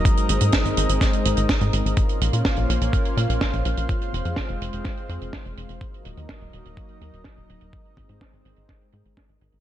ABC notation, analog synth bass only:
X:1
M:4/4
L:1/16
Q:1/4=125
K:Abmix
V:1 name="Analog synth bass" clef=bass
z2 A,,, A,, z A,,, A,,, A,,, z2 A,,, A,,, z A,, A,,, A,,, | z2 B,,, B,, z B,,, B,,, B,,, z2 B,, B,,, z B,,, B,,, B,,, | z2 F,,, F,, z F,,, F,,, F,,, z2 F,, F,,, z F,,, F,,, F,,, | z2 E,,, E,, z E,,, E,,, E,,, z2 E,, E,,, z E,,, E,,, E,,, |
z2 A,,, A,, z A,,, A,,, A,,, z2 A,, A,,, z A,,, A,,, A,,, |]